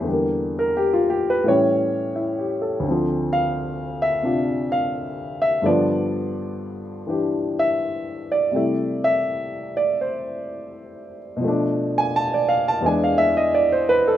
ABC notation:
X:1
M:4/4
L:1/16
Q:"Swing" 1/4=85
K:Gmix
V:1 name="Grand piano"
z3 _B G F G =B ^c2 z2 (3E2 G2 A2 | z2 f4 e4 f4 e2 | d6 z4 e4 d2- | d2 e4 d2 c6 z2 |
z3 ^g a d f a g f e ^d =d c B A |]
V:2 name="Grand piano" clef=bass
[E,,D,G,_B,]8 [A,,E,G,^C]8 | [D,,D,F,C]8 [C,DF]8 | [G,,D,F,B,]8 [E,DG]8 | [C,G,A,E]16 |
[B,,F,A,D]8 [E,,E,^G,D]8 |]